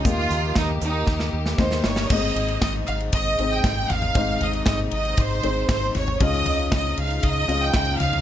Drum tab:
CC |----------------|x---------------|----------------|----------------|
RD |----------------|--xxx-xxx-x-x-x-|x-xxx-xxx-x-x-x-|x-xxx-xxx-x-x-x-|
HH |x-x-x-x---------|----------------|----------------|----------------|
SD |----o---oo-ooooo|----o-------o-o-|----o-------o-o-|----o-------o-o-|
FT |----------------|--------------oo|--o-----------oo|--o-----------oo|
BD |o---o---o---o---|o---o---o---o---|o---o---o---o---|o---o---o---o---|